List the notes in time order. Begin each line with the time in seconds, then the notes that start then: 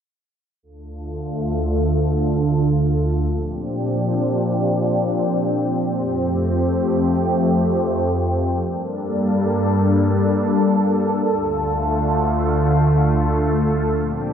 0.63 D2 D3 A3 F4 A4
3.29 A#2 F3 C4 D4 G4
5.96 F2 F3 A3 G4
8.63 G2 G3 A#3 D4 A4
11.29 D2 D3 A3 F4
13.96 A#2 F3 C4 D4 G4